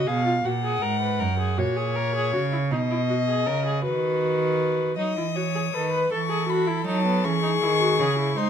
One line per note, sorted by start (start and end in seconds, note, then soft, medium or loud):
0.07 0.44 B2 medium
0.07 0.24 G#4 medium
0.07 0.47 F5 medium
0.25 0.33 F4 medium
0.44 0.82 A#2 medium
0.44 0.52 F#4 medium
0.44 1.60 F#5 medium
0.64 0.84 G#4 medium
0.82 1.21 G#2 medium
0.82 1.01 A#4 medium
1.01 1.21 B4 medium
1.19 1.59 F#2 medium
1.19 1.39 A#4 medium
1.39 1.59 G#4 medium
1.58 2.35 A#2 medium
1.58 1.78 F#4 medium
1.58 2.73 C#5 medium
1.77 1.97 G#4 medium
1.96 2.15 A#4 medium
2.15 2.33 G#4 medium
2.33 2.72 C#3 medium
2.33 2.41 F#4 medium
2.52 2.60 E4 medium
2.71 3.47 B2 medium
2.71 2.79 D#4 medium
2.71 3.84 D#5 medium
2.91 2.98 E4 medium
3.09 3.17 F#4 medium
3.28 3.48 G#4 medium
3.46 3.84 C#3 medium
3.46 3.65 A#4 medium
3.66 3.84 G#4 medium
3.83 4.97 D#3 medium
3.83 4.96 F#4 medium
3.83 4.96 B4 medium
4.97 5.18 F#3 medium
4.97 5.16 D#4 medium
4.97 5.37 D#5 medium
4.97 6.08 D#6 medium
5.17 5.73 E3 medium
5.17 5.25 E4 medium
5.35 5.43 F#4 medium
5.35 5.76 C#5 medium
5.55 5.62 G#4 medium
5.73 6.10 D#3 medium
5.73 5.92 A4 medium
5.73 6.13 B4 medium
5.92 6.10 B4 medium
6.11 6.85 E3 medium
6.11 6.19 A4 medium
6.11 7.24 A4 medium
6.11 6.51 C#6 medium
6.30 6.48 G#4 medium
6.48 6.69 F#4 medium
6.48 6.86 B5 medium
6.67 6.85 E4 medium
6.86 7.25 F#3 medium
6.86 7.04 D#4 medium
6.86 7.26 A5 medium
7.05 7.25 B3 medium
7.23 7.61 E3 medium
7.23 7.42 C#4 medium
7.23 8.38 G#4 medium
7.23 8.39 C#6 medium
7.43 7.50 D#4 medium
7.61 8.01 D#3 medium
7.61 7.69 E4 medium
7.81 7.99 F#4 medium
7.99 8.37 C#3 medium
7.99 8.18 G#4 medium
8.18 8.38 E4 medium
8.37 8.50 G#3 medium
8.37 8.50 D#4 medium
8.37 8.50 C5 medium
8.37 8.50 C6 medium